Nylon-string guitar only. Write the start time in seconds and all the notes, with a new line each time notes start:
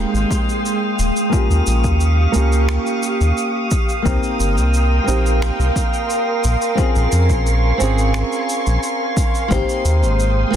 Already playing: A#3 C4 D#4 G4
1.30 A#3 C#4 F4
1.35 G4
2.32 A#3 C#4 F4
2.37 G4
4.02 A#3 C4 D#4
4.08 G4
5.04 A#3 C4 D#4
5.10 G4
6.75 C4 C#4
6.79 F4 G#4
7.78 C4 C#4 F4
7.83 G#4
9.48 A#3 C4 D#4
9.54 G4
10.50 A#3 C4